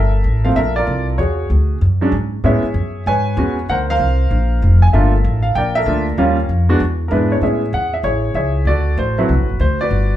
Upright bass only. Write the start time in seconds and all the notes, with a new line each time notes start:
Already playing: G1
0.24 A1
0.56 A#1
0.87 C2
1.19 E2
1.50 D2
1.81 F#2
2.12 G#2
2.44 A2
2.63 muted upright bass stroke
2.74 F#2
3.06 G#2
3.37 E2
3.69 D2
4.00 C2
4.31 A#1
4.62 F1
4.94 G1
5.25 A1
5.56 A#1
5.86 D2
6.18 D#2
6.49 F2
6.80 E2
7.11 G#2
7.41 A2
7.73 E2
8.03 A1
8.34 C#2
8.65 D2
8.98 A1
9.29 C2
9.39 A1
9.49 F#1
9.59 D2
9.91 G1